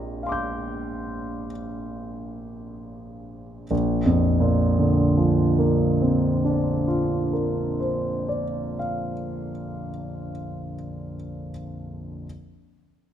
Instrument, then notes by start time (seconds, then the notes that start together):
grand piano
Already playing: A#1 F3 C4 D4 G4 A#4 D#5 G5 A#5
0.23 F5 C6
0.29 D6 G6
3.71 A#1
4.06 F2
4.40 A#2
4.79 D3
5.17 F3
5.59 A#3
6.02 C4
6.45 D4
6.88 F4
7.33 A#4
7.80 C5
8.29 D5
8.79 F5